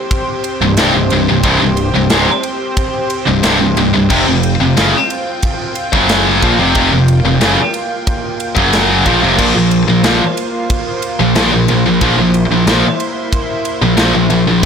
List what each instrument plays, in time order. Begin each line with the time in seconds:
Already playing: analog synth pad C4 G4 C5
0.11 kick, ride
0.44 ride
0.61 picked electric bass C1, distorted electric guitar C2 G2
0.77 picked electric bass C1, distorted electric guitar C2 G2, snare, ride
0.94 picked electric bass C1, distorted electric guitar C2 G2
1.10 picked electric bass C1, distorted electric guitar C2 G2, ride
1.29 picked electric bass C1, distorted electric guitar C2 G2
1.43 picked electric bass C1, distorted electric guitar C2 G2, kick, ride
1.62 picked electric bass C1, distorted electric guitar C2 G2
1.77 ride
1.94 picked electric bass C1, distorted electric guitar C2 G2
2.10 picked electric bass C#1, distorted electric guitar C#2 G#2, snare, ride
2.43 ride
2.77 kick, ride
3.10 ride
3.27 picked electric bass C1, distorted electric guitar C2 G2
3.43 picked electric bass C1, distorted electric guitar C2 G2, snare, ride
3.59 picked electric bass C1, distorted electric guitar C2 G2
3.77 picked electric bass C1, distorted electric guitar C2 G2, ride
3.94 picked electric bass C1, distorted electric guitar C2 G2
4.10 picked electric bass F1, distorted electric guitar F2 C3, analog synth pad F4 G5, kick, crash
4.27 picked electric bass F1, distorted electric guitar F2 C3
4.43 ride
4.60 picked electric bass F1, distorted electric guitar F2 C3
4.77 picked electric bass F#1, distorted electric guitar F#2 C#3, snare, ride
5.10 ride
5.42 kick, ride
5.75 ride
5.93 picked electric bass F#1, distorted electric guitar F#2 C#3 F#3, kick
6.09 snare, ride
6.42 picked electric bass A#1, distorted electric guitar A#2 F3, kick, ride
6.59 picked electric bass F1, distorted electric guitar F2 C3
6.75 picked electric bass F1, distorted electric guitar F2 C3, analog synth pad A#3, kick, ride
6.92 picked electric bass F1, distorted electric guitar F2 C3
7.08 ride
7.24 picked electric bass F1, distorted electric guitar F2 C3
7.40 picked electric bass F#1, distorted electric guitar F#2 C#3, snare, ride
7.74 ride
8.07 kick, ride
8.40 ride
8.55 picked electric bass F#1, distorted electric guitar F#2 C#3 F#3, kick
8.73 snare, ride
9.05 picked electric bass A#1, distorted electric guitar A#2 F3, kick, ride
9.21 picked electric bass F1, distorted electric guitar F2 C3
9.38 picked electric bass A#1, distorted electric guitar A#2 F3, analog synth pad F4 C5, kick, crash
9.54 picked electric bass A#1, distorted electric guitar A#2 F3
9.71 ride
9.87 picked electric bass A#1, distorted electric guitar A#2 F3
10.03 picked electric bass A#1, distorted electric guitar A#2 F3, snare, ride
10.37 ride
10.70 kick, ride
11.02 ride
11.20 picked electric bass A#1, distorted electric guitar A#2 F3
11.35 picked electric bass A#1, distorted electric guitar A#2 F3, snare, ride
11.52 picked electric bass A#1, distorted electric guitar A#2 F3
11.68 picked electric bass A#1, distorted electric guitar A#2 F3, ride
11.86 picked electric bass A#1, distorted electric guitar A#2 F3
12.01 picked electric bass A#1, distorted electric guitar A#2 F3, analog synth pad E4, kick, ride
12.17 picked electric bass A#1, distorted electric guitar A#2 F3
12.34 ride
12.49 picked electric bass A#1, distorted electric guitar A#2 F3
12.67 picked electric bass A#1, distorted electric guitar A#2 F3, snare, ride
13.00 ride
13.33 kick, ride
13.65 ride
13.82 picked electric bass A#1, distorted electric guitar A#2 F3
13.97 picked electric bass A#1, distorted electric guitar A#2 F3, snare, ride
14.14 picked electric bass A#1, distorted electric guitar A#2 F3
14.29 picked electric bass A#1, distorted electric guitar A#2 F3, ride
14.47 picked electric bass A#1, distorted electric guitar A#2 F3
14.62 analog synth pad G5